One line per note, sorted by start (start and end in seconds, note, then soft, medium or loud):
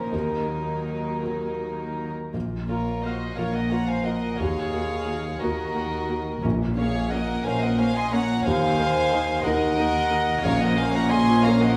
0.00 0.13 F3 soft
0.00 2.10 A#3 soft
0.00 0.15 C#4 soft
0.00 0.13 A#4 soft
0.00 2.09 A#4 soft
0.00 0.15 C5 medium
0.00 0.15 C#5 medium
0.00 0.15 D#5 medium
0.12 2.30 D#2 soft
0.12 2.09 D#3 soft
0.12 2.10 F#3 soft
0.12 2.09 D#4 soft
0.12 1.22 A#4 medium
1.23 2.30 F#4 soft
1.23 2.30 A#4 soft
2.34 4.36 A#1 soft
2.34 3.26 A#1 soft
2.34 3.26 A#2 medium
2.34 2.42 A#3 soft
2.34 2.42 F4 soft
2.68 2.78 A#3 soft
2.68 3.01 F4 soft
2.68 2.78 F4 soft
2.68 3.01 A#4 soft
2.68 3.04 C#5 medium
3.02 3.12 A#3 soft
3.02 3.38 F#4 soft
3.02 3.38 C5 soft
3.02 3.37 D#5 medium
3.02 3.12 F5 soft
3.36 4.28 A#1 medium
3.36 4.28 A#2 soft
3.36 4.36 F3 soft
3.36 3.46 A#3 soft
3.36 3.46 F4 soft
3.36 3.53 A#4 medium
3.36 4.37 A#4 soft
3.36 3.54 C#5 medium
3.36 3.56 F5 medium
3.52 3.72 A#4 medium
3.52 3.71 D#5 medium
3.52 3.72 F#5 medium
3.70 3.80 A#3 soft
3.70 3.80 F4 soft
3.70 3.89 C#5 medium
3.70 3.89 F#5 medium
3.70 3.90 A#5 medium
3.87 4.06 C5 medium
3.87 4.05 F5 medium
3.87 4.05 G#5 medium
4.04 4.13 F3 soft
4.04 4.13 A#3 soft
4.04 4.40 A#4 medium
4.04 4.39 D#5 medium
4.04 4.39 F#5 medium
4.38 5.30 D#2 medium
4.38 6.40 D#2 soft
4.38 5.31 D#3 medium
4.38 4.46 A#3 soft
4.38 4.46 F#4 soft
4.38 5.43 G#4 medium
4.38 5.41 C#5 medium
4.38 5.42 F5 medium
4.72 4.80 A#3 soft
4.72 4.80 F#4 soft
5.07 5.15 A#3 soft
5.07 5.15 F#4 soft
5.41 6.32 D#2 medium
5.41 6.32 D#3 medium
5.41 5.49 A#3 medium
5.41 5.49 F#4 medium
5.41 6.44 F#4 medium
5.41 6.41 F#4 soft
5.41 6.44 A#4 medium
5.41 6.41 A#4 soft
5.41 6.43 D#5 medium
5.75 5.83 A#3 soft
5.75 5.83 F#4 soft
6.09 6.17 A#3 soft
6.09 6.17 F#4 soft
6.43 7.34 A#1 medium
6.43 8.42 A#1 medium
6.43 7.34 A#2 medium
6.43 7.42 A#2 medium
6.43 6.51 A#3 medium
6.43 6.51 C#4 medium
6.76 6.86 A#3 medium
6.76 6.85 C#4 medium
6.76 7.09 G#4 medium
6.76 7.09 C#5 medium
6.76 7.11 F5 medium
7.10 7.19 A#3 medium
7.10 7.19 C#4 medium
7.10 7.46 A#4 medium
7.10 7.45 D#5 medium
7.10 7.46 F#5 medium
7.44 8.34 A#1 medium
7.44 8.34 A#2 medium
7.44 7.53 A#3 medium
7.44 7.53 C#4 medium
7.44 8.42 C#4 soft
7.44 8.43 A#4 soft
7.44 7.62 C5 medium
7.44 7.62 F5 medium
7.44 7.64 G#5 medium
7.61 7.81 A#4 medium
7.61 7.79 D#5 medium
7.61 7.80 F#5 medium
7.78 7.87 A#3 medium
7.78 7.87 C#4 medium
7.78 7.96 C5 medium
7.78 7.96 F5 medium
7.78 7.98 G#5 medium
7.96 8.13 D#5 medium
7.96 8.13 G#5 medium
7.96 8.13 C6 medium
8.11 8.20 A#3 medium
8.11 8.21 C#4 medium
8.11 8.45 C#5 medium
8.11 8.45 F#5 medium
8.11 8.45 A#5 medium
8.45 9.33 D#2 medium
8.45 10.40 D#2 medium
8.45 9.33 D#3 medium
8.45 8.53 A#3 medium
8.45 8.54 D#4 medium
8.45 9.44 C5 medium
8.45 9.43 F5 medium
8.45 9.45 G#5 loud
8.79 8.87 A#3 medium
8.79 8.87 D#4 medium
9.12 9.20 A#3 medium
9.12 9.20 D#4 medium
9.43 10.32 D#2 medium
9.43 10.33 D#3 medium
9.43 9.53 A#3 medium
9.43 9.53 D#4 medium
9.43 10.41 D#4 soft
9.43 10.43 A#4 medium
9.43 10.41 A#4 soft
9.43 10.41 D#5 medium
9.43 10.43 F#5 loud
9.78 9.86 A#3 medium
9.78 9.86 D#4 medium
10.10 10.18 A#3 medium
10.10 10.19 D#4 medium
10.43 11.77 A#1 medium
10.43 11.77 A#2 medium
10.43 10.59 C#3 medium
10.43 11.77 C#4 medium
10.43 10.60 A#4 medium
10.43 10.60 C#5 medium
10.43 10.63 F5 loud
10.61 10.78 F3 medium
10.61 10.77 A#4 medium
10.61 10.78 D#5 medium
10.61 10.79 F#5 medium
10.76 10.94 A#3 medium
10.76 10.95 C5 medium
10.76 10.94 F5 medium
10.76 10.97 G#5 medium
10.93 11.11 F3 medium
10.93 11.11 C#5 medium
10.93 11.11 F#5 medium
10.93 11.12 A#5 medium
11.10 11.28 C#3 medium
11.10 11.44 D#5 medium
11.10 11.44 G#5 medium
11.10 11.46 C6 loud
11.29 11.45 F3 medium
11.44 11.62 A#3 medium
11.44 11.77 C#4 soft
11.44 11.77 A#4 medium
11.44 11.61 C#5 medium
11.44 11.61 F5 medium
11.44 11.63 A#5 medium
11.61 11.77 F3 medium
11.61 11.77 A#4 medium
11.61 11.77 D#5 medium
11.61 11.76 F#5 medium